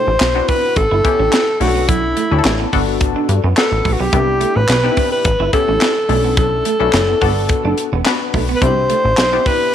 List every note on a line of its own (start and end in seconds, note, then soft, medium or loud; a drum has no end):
0.00 0.15 B2 medium
0.00 0.15 D4 medium
0.00 0.15 E4 medium
0.00 0.15 G4 medium
0.00 0.50 C5 loud
0.07 0.17 A1 medium
0.07 muted clean electric guitar stroke soft
0.20 0.42 B1 medium
0.20 muted clean electric guitar stroke soft
0.20 snare loud
0.20 clap loud
0.20 closed hi-hat medium
0.35 0.76 B3 medium
0.35 0.45 C4 medium
0.35 0.76 D4 medium
0.35 0.77 E4 medium
0.35 0.77 F#4 medium
0.48 0.59 C4 medium
0.48 0.78 B4 loud
0.48 kick medium
0.48 open hi-hat medium
0.76 0.88 A1 loud
0.76 1.60 A4 loud
0.76 kick loud
0.76 closed hi-hat medium
0.91 1.02 G1 loud
0.91 1.01 E4 medium
1.04 1.45 B3 medium
1.04 1.45 C#4 medium
1.04 1.46 E4 medium
1.04 1.46 G4 medium
1.04 muted clean electric guitar stroke soft
1.04 kick medium
1.04 closed hi-hat medium
1.19 1.29 A1 medium
1.19 1.29 C#4 medium
1.32 muted clean electric guitar stroke soft
1.32 snare loud
1.32 clap medium
1.32 closed hi-hat medium
1.60 2.15 B1 loud
1.60 1.71 A3 medium
1.60 2.16 C#4 medium
1.60 2.17 D4 medium
1.60 2.17 E4 medium
1.60 1.90 F#4 medium
1.60 1.68 G4 medium
1.60 open hi-hat medium
1.67 2.20 A4 medium
1.76 1.85 B3 medium
1.89 1.99 F#3 medium
1.89 2.73 E4 medium
1.89 kick loud
1.89 closed hi-hat loud
2.17 2.27 A3 medium
2.17 closed hi-hat medium
2.31 2.41 D2 loud
2.31 2.71 C#4 medium
2.31 2.71 D4 medium
2.31 2.71 E4 medium
2.31 2.38 G4 medium
2.31 muted clean electric guitar stroke soft
2.39 2.72 A4 loud
2.45 2.66 A1 medium
2.45 muted clean electric guitar stroke soft
2.45 snare loud
2.45 clap loud
2.45 closed hi-hat medium
2.60 2.69 B3 medium
2.73 3.16 G1 loud
2.73 2.83 B3 medium
2.73 3.41 B3 medium
2.73 3.41 D4 medium
2.73 3.41 F#4 medium
2.73 3.41 A4 loud
2.73 kick medium
2.73 open hi-hat medium
3.01 kick loud
3.01 closed hi-hat medium
3.16 3.25 D4 medium
3.29 3.40 G2 loud
3.29 muted clean electric guitar stroke soft
3.29 closed hi-hat medium
3.44 3.54 F#2 medium
3.44 3.53 B3 medium
3.56 3.98 B3 medium
3.56 3.98 D4 medium
3.56 3.98 F#4 medium
3.56 3.94 A4 medium
3.56 3.64 A#4 medium
3.56 muted clean electric guitar stroke soft
3.56 snare loud
3.56 clap medium
3.56 closed hi-hat medium
3.64 4.01 B4 medium
3.72 3.82 A1 medium
3.85 3.96 A#1 medium
3.85 3.95 A3 medium
3.85 kick medium
3.85 open hi-hat medium
3.93 4.02 F#4 medium
4.00 4.10 B1 medium
4.00 4.09 B3 medium
4.00 4.58 G4 medium
4.13 4.46 C2 loud
4.13 4.23 G3 medium
4.13 4.64 B3 medium
4.13 4.64 D4 medium
4.13 4.64 E4 medium
4.13 4.64 G4 medium
4.13 kick loud
4.13 closed hi-hat loud
4.41 4.51 A3 medium
4.41 closed hi-hat medium
4.55 4.66 A1 medium
4.55 5.12 B4 loud
4.55 muted clean electric guitar stroke soft
4.69 4.90 B1 medium
4.69 muted clean electric guitar stroke soft
4.69 snare loud
4.69 clap loud
4.69 closed hi-hat medium
4.83 5.25 B3 medium
4.83 4.93 C4 medium
4.83 5.25 D4 medium
4.83 4.90 D#4 medium
4.83 5.25 G4 medium
4.91 5.29 E4 medium
4.97 5.07 C4 medium
4.97 kick medium
4.97 open hi-hat medium
5.12 5.50 B4 loud
5.25 5.36 A1 loud
5.25 kick loud
5.25 closed hi-hat medium
5.40 5.50 G1 medium
5.40 5.49 E4 medium
5.53 5.94 B3 medium
5.53 5.94 C#4 medium
5.53 5.94 E4 medium
5.53 5.94 G4 medium
5.53 6.34 A4 loud
5.53 muted clean electric guitar stroke soft
5.53 kick medium
5.53 closed hi-hat medium
5.68 5.78 A1 medium
5.68 5.78 C#4 medium
5.81 muted clean electric guitar stroke soft
5.81 snare loud
5.81 clap medium
5.81 closed hi-hat medium
6.09 6.63 B1 loud
6.09 6.20 A3 medium
6.09 6.65 C#4 medium
6.09 6.65 D4 medium
6.09 6.65 E4 medium
6.09 6.65 A4 medium
6.09 open hi-hat medium
6.25 6.34 B3 medium
6.37 6.48 F#3 medium
6.37 8.02 A4 medium
6.37 kick loud
6.37 closed hi-hat medium
6.65 6.76 A3 medium
6.65 closed hi-hat medium
6.79 6.90 B1 medium
6.79 7.19 C#4 medium
6.79 7.19 D4 medium
6.79 7.19 E4 medium
6.79 7.20 A4 loud
6.79 muted clean electric guitar stroke soft
6.93 7.15 F#1 loud
6.93 snare loud
6.93 clap medium
6.93 closed hi-hat medium
7.09 7.18 B3 medium
7.21 7.54 G1 loud
7.21 7.89 B3 loud
7.21 7.32 B3 medium
7.21 7.89 D4 medium
7.21 7.89 F#4 medium
7.21 7.90 A4 loud
7.21 kick medium
7.21 open hi-hat medium
7.49 kick loud
7.49 closed hi-hat loud
7.64 7.74 F#1 medium
7.64 7.74 D4 medium
7.78 muted clean electric guitar stroke soft
7.78 closed hi-hat medium
7.92 8.02 E1 medium
7.92 8.02 B3 medium
8.05 8.46 B3 medium
8.05 8.46 D4 medium
8.05 8.47 F#4 medium
8.05 8.47 B4 medium
8.05 muted clean electric guitar stroke soft
8.05 snare loud
8.05 clap medium
8.05 closed hi-hat medium
8.34 8.55 B1 medium
8.34 8.44 A3 medium
8.34 kick medium
8.34 open hi-hat medium
8.49 8.58 B3 medium
8.55 8.64 B4 medium
8.61 8.94 C2 loud
8.61 9.12 B2 medium
8.61 8.73 G3 medium
8.61 9.12 D4 medium
8.61 9.12 E4 medium
8.61 9.12 G4 medium
8.61 9.49 C5 loud
8.61 kick loud
8.61 closed hi-hat loud
8.90 9.00 A3 medium
8.90 closed hi-hat medium
9.05 9.15 A1 medium
9.05 muted clean electric guitar stroke soft
9.17 9.39 B1 medium
9.17 muted clean electric guitar stroke soft
9.17 snare loud
9.17 clap medium
9.17 closed hi-hat medium
9.33 9.74 B3 medium
9.33 9.42 C4 medium
9.33 9.74 D4 medium
9.33 9.74 E4 medium
9.33 9.74 G4 loud
9.46 9.57 C4 medium
9.46 9.75 B4 loud
9.46 kick medium
9.46 open hi-hat medium